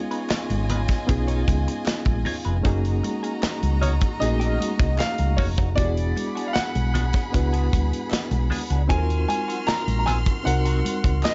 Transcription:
Already playing: reed electric piano B3 C#4 D#4 F4 G#4, violin section F4 D#5 G#5, grand piano C#5
0.11 clean electric guitar D#4 F4 B4, closed hi-hat
0.30 muted clean electric guitar stroke, muted fingered electric bass stroke, snare, clap, closed hi-hat, muted conga
0.50 fingered electric bass G#1, closed hi-hat, high conga
0.69 clean electric guitar D#4 F4 B4, closed hi-hat, low conga
0.88 muted clean electric guitar stroke, kick, snare, closed hi-hat
1.07 fingered electric bass B1, reed electric piano B3 C#4 D#4 F4 G#4, muted clean electric guitar stroke, kick, closed hi-hat
1.28 clean electric guitar D#4 F4 C#5, closed hi-hat
1.48 fingered electric bass C#2, muted clean electric guitar stroke, kick, closed hi-hat, muted conga, high conga
1.68 muted clean electric guitar stroke, closed hi-hat
1.86 muted fingered electric bass stroke, muted clean electric guitar stroke, snare, clap, closed hi-hat
2.05 fingered electric bass A#1, muted clean electric guitar stroke, kick, closed hi-hat, high conga
2.25 clean electric guitar D#4 F4 C#5, open hi-hat, muted conga, low conga
2.45 fingered electric bass F1, clean electric guitar D#4 F4 B4, closed hi-hat
2.63 fingered electric bass F#1, reed electric piano A3 C#4 D#4 F#4 G#4, clean electric guitar A#3 D#4 F#4, violin section F#4 D#5 A#5, kick, closed hi-hat
2.69 reed electric piano A#3
2.85 closed hi-hat
3.03 muted clean electric guitar stroke, closed hi-hat, muted conga, high conga
3.23 clean electric guitar A#3 D#4 G#4, closed hi-hat
3.43 muted clean electric guitar stroke, muted fingered electric bass stroke, snare, clap, closed hi-hat, muted conga
3.63 fingered electric bass C#2, closed hi-hat, high conga
3.81 clean electric guitar A#3 D#4 F#4, grand piano C#5, closed hi-hat, low conga
4.01 muted clean electric guitar stroke, kick, closed hi-hat
4.20 fingered electric bass A#1, reed electric piano A3 C#4 D#4 F#4 G#4, grand piano D#5, muted clean electric guitar stroke, closed hi-hat, muted conga
4.26 reed electric piano A#3
4.40 clean electric guitar A#3 D#4 G#4, closed hi-hat
4.60 closed hi-hat, high conga
4.79 fingered electric bass C2, muted clean electric guitar stroke, kick, closed hi-hat
4.98 grand piano F5, muted clean electric guitar stroke, snare, clap, closed hi-hat, muted conga
5.18 fingered electric bass C#2, muted clean electric guitar stroke, closed hi-hat, high conga
5.37 fingered electric bass F1, clean electric guitar A#3 D#4 F#4, grand piano C#5, kick, open hi-hat, muted conga, low conga
5.57 clean electric guitar A#3 D#4 F#4, kick, closed hi-hat
5.75 fingered electric bass E1, clean electric guitar G#3 D4 F#4, reed electric piano B3 D4 E4 F#4, violin section G#4 F#5 B5, grand piano D5, kick, closed hi-hat, muted conga
5.79 reed electric piano G4
5.85 reed electric piano G#4
5.97 closed hi-hat
6.16 muted clean electric guitar stroke, closed hi-hat, muted conga, high conga
6.35 clean electric guitar G#3 D4 F#4, closed hi-hat
6.48 grand piano F5
6.53 grand piano F#5, muted clean electric guitar stroke, muted fingered electric bass stroke, snare, clap, closed hi-hat
6.75 fingered electric bass B1, closed hi-hat, high conga
6.94 clean electric guitar G#3 D4 F#4, closed hi-hat, muted conga, low conga
7.13 muted clean electric guitar stroke, kick, snare, closed hi-hat
7.32 fingered electric bass C#2, reed electric piano B3 D4 E4 F#4 B4, muted clean electric guitar stroke, kick, closed hi-hat, muted conga
7.53 clean electric guitar G#3 D4 G#4, closed hi-hat
7.72 fingered electric bass D2, muted clean electric guitar stroke, kick, closed hi-hat, high conga
7.91 muted clean electric guitar stroke, closed hi-hat
8.11 muted clean electric guitar stroke, muted fingered electric bass stroke, snare, clap, closed hi-hat, muted conga
8.31 fingered electric bass B1, muted clean electric guitar stroke, closed hi-hat, high conga
8.50 clean electric guitar G#3 D4 G#4, open hi-hat, low conga
8.70 fingered electric bass C#2, clean electric guitar G#3 D4 F#4, closed hi-hat
8.88 fingered electric bass D#2, clean electric guitar F#3 C4 F4, reed electric piano C4 D#4 F4 F#4 A4, violin section F#4 C6 F6, grand piano G#5, kick, closed hi-hat, muted conga
8.98 reed electric piano A#4
9.10 closed hi-hat
9.28 grand piano G#5, muted clean electric guitar stroke, closed hi-hat, muted conga, high conga
9.48 clean electric guitar F#3 C4 F#4, closed hi-hat
9.67 grand piano A#5, muted clean electric guitar stroke, muted fingered electric bass stroke, snare, clap, closed hi-hat, muted conga
9.88 fingered electric bass A#1, closed hi-hat, high conga
9.99 grand piano A#5
10.06 clean electric guitar F#3 C4 F4, grand piano G#5, closed hi-hat, muted conga, low conga
10.26 muted clean electric guitar stroke, kick, closed hi-hat
10.43 fingered electric bass C2, reed electric piano C4 D#4 F#4 A#4, grand piano F#5, muted clean electric guitar stroke, closed hi-hat, muted conga
10.65 clean electric guitar F#3 C4 F#4, closed hi-hat
10.85 muted clean electric guitar stroke, closed hi-hat, muted conga, high conga
11.04 fingered electric bass C#2, muted clean electric guitar stroke, kick, closed hi-hat
11.23 grand piano D#5, muted clean electric guitar stroke, snare, clap, closed hi-hat, muted conga

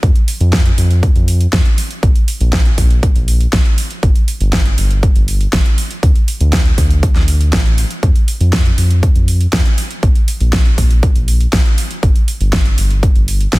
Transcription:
0.03 analog synth bass F2, kick, closed hi-hat
0.16 closed hi-hat
0.28 open hi-hat
0.41 analog synth bass F2, closed hi-hat
0.53 kick, snare, closed hi-hat
0.66 closed hi-hat
0.78 analog synth bass F2, open hi-hat
0.91 closed hi-hat
1.03 kick, closed hi-hat
1.16 analog synth bass F2, closed hi-hat
1.28 open hi-hat
1.41 closed hi-hat
1.53 analog synth bass F2, kick, snare, closed hi-hat
1.66 closed hi-hat
1.78 open hi-hat
1.91 closed hi-hat
2.03 analog synth bass A#1, kick, closed hi-hat
2.16 closed hi-hat
2.28 open hi-hat
2.40 analog synth bass A#1, closed hi-hat
2.53 kick, snare, closed hi-hat
2.65 closed hi-hat
2.78 analog synth bass A#1, kick, open hi-hat
2.90 closed hi-hat
3.03 kick, closed hi-hat
3.15 analog synth bass A#1, closed hi-hat
3.28 open hi-hat
3.41 closed hi-hat
3.53 analog synth bass A#1, kick, snare, closed hi-hat
3.66 closed hi-hat
3.78 open hi-hat
3.90 closed hi-hat
4.03 analog synth bass G1, kick, closed hi-hat
4.16 closed hi-hat
4.28 open hi-hat
4.41 analog synth bass G1, closed hi-hat
4.53 kick, snare, closed hi-hat
4.66 closed hi-hat
4.78 analog synth bass G1, open hi-hat
4.91 closed hi-hat
5.03 kick, closed hi-hat
5.15 analog synth bass G1, closed hi-hat
5.28 open hi-hat
5.41 closed hi-hat
5.53 analog synth bass G1, kick, snare, closed hi-hat
5.66 closed hi-hat
5.78 open hi-hat
5.91 closed hi-hat
6.03 analog synth bass D2, kick, closed hi-hat
6.16 closed hi-hat
6.28 open hi-hat
6.41 analog synth bass D2, closed hi-hat
6.53 kick, snare, closed hi-hat
6.66 closed hi-hat
6.78 analog synth bass D2, kick, open hi-hat
6.91 closed hi-hat
7.03 kick, closed hi-hat
7.15 analog synth bass D2, snare, closed hi-hat
7.28 open hi-hat
7.41 closed hi-hat
7.53 analog synth bass A1, kick, snare, closed hi-hat
7.66 closed hi-hat
7.78 open hi-hat
7.91 closed hi-hat
8.03 analog synth bass F2, kick, closed hi-hat
8.16 closed hi-hat
8.28 open hi-hat
8.40 analog synth bass F2, closed hi-hat
8.53 kick, snare, closed hi-hat
8.66 closed hi-hat
8.78 analog synth bass F2, open hi-hat
8.91 closed hi-hat
9.03 kick, closed hi-hat
9.15 analog synth bass F2, closed hi-hat
9.28 open hi-hat
9.41 closed hi-hat
9.53 analog synth bass F2, kick, snare, closed hi-hat
9.66 closed hi-hat
9.78 open hi-hat
9.91 closed hi-hat
10.03 analog synth bass A#1, kick, closed hi-hat
10.15 closed hi-hat
10.28 open hi-hat
10.40 analog synth bass A#1, closed hi-hat
10.53 kick, snare, closed hi-hat
10.66 closed hi-hat
10.78 analog synth bass A#1, kick, open hi-hat
10.91 closed hi-hat
11.03 kick, closed hi-hat
11.15 analog synth bass A#1, closed hi-hat
11.28 open hi-hat
11.41 closed hi-hat
11.53 analog synth bass A#1, kick, snare, closed hi-hat
11.66 closed hi-hat
11.78 open hi-hat
11.91 closed hi-hat
12.03 analog synth bass G1, kick, closed hi-hat
12.16 closed hi-hat
12.28 open hi-hat
12.40 analog synth bass G1, closed hi-hat
12.53 kick, snare, closed hi-hat
12.66 closed hi-hat
12.78 analog synth bass G1, open hi-hat
12.91 closed hi-hat
13.03 kick, closed hi-hat
13.15 analog synth bass G1, closed hi-hat
13.28 open hi-hat
13.41 closed hi-hat
13.53 analog synth bass G1, kick, snare, closed hi-hat

